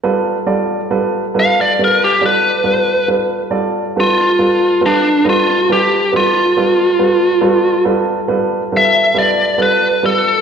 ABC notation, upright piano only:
X:1
M:12/8
L:1/8
Q:3/8=46
K:Gmix
V:1 name="Upright piano"
[G,FAB] [G,FAd] [G,FAB] [G,FAB] [G,FAB] [G,FAd] [G,FAB] [G,FAB] [G,FAd] [G,FAB] [G,FAB] [G,FAB] | [G,FAB] [G,FAB] [G,FAB] [G,FAB] [G,FAB] [G,FAB] [G,FAB] [G,FAB] [G,FAB] [G,FAB] [G,FAB] [G,FAB] |]